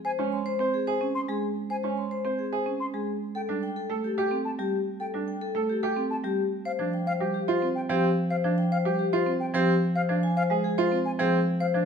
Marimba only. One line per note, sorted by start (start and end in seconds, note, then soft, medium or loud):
0.18 0.36 G#3 medium
0.59 0.78 C4 medium
1.01 1.19 C#4 medium
1.28 1.47 G#3 medium
1.83 2.02 G#3 medium
2.25 2.43 C4 medium
2.66 2.84 C#4 soft
2.94 3.12 G#3 medium
3.49 3.67 G3 medium
3.90 4.08 A3 medium
4.31 4.49 C4 medium
4.59 4.77 G3 medium
5.14 5.32 G3 medium
5.55 5.73 A3 medium
5.96 6.14 C4 medium
6.24 6.42 G3 medium
6.79 6.97 F3 medium
7.21 7.38 G3 medium
7.62 7.80 C4 medium
7.90 8.07 F3 medium
8.44 8.62 F3 medium
8.85 9.03 G3 medium
9.26 9.45 C4 medium
9.54 9.72 F3 medium
10.09 10.27 F3 medium
10.50 10.68 G#3 medium
10.92 11.10 C4 medium
11.19 11.37 F3 medium
11.74 11.85 F3 medium